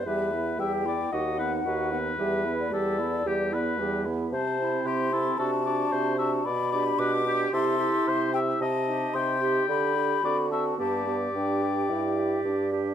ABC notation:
X:1
M:4/4
L:1/16
Q:1/4=112
K:G
V:1 name="Flute"
e4 g4 f6 f2 | e3 d8- d z4 | a4 c'4 a6 a2 | b4 d'4 c'6 g2 |
a4 c'4 b6 a2 | a3 z g8 z4 |]
V:2 name="Oboe"
B4 e2 d2 ^d2 B2 B4- | B4 A4 G2 B4 z2 | c4 G2 A2 A2 d2 c2 e2 | d2 d2 B2 G2 A4 c2 e2 |
_e4 g8 d2 =e2 | d12- d2 z2 |]
V:3 name="Clarinet"
G2 E2 G2 E2 F2 ^D2 F2 D2 | G2 E2 G2 E2 G2 E2 G2 E2 | z2 E4 E2 F2 F4 F2 | z2 G4 G2 G2 G4 G2 |
z2 G4 G2 G2 G2 F2 F2 | G2 G4 G4 G4 G2 |]
V:4 name="French horn"
G,2 B,2 G,2 B,2 ^D2 B,2 D2 B,2 | G,2 B,2 G,2 B,2 G,2 B,2 G,2 B,2 | z2 C4 C2 D2 D4 D2 | z2 D4 D2 E2 E4 E2 |
z2 _E4 E2 D2 D2 C2 C2 | B,2 B,2 D4 E4 D4 |]
V:5 name="Bassoon" clef=bass
E,,4 E,,4 ^D,,4 D,,4 | E,,4 E,,4 E,,4 E,,4 | C,4 C,4 C,4 C,4 | B,,4 B,,4 C,4 C,4 |
C,4 C,4 D,4 D,4 | G,,4 G,,4 G,,4 G,,4 |]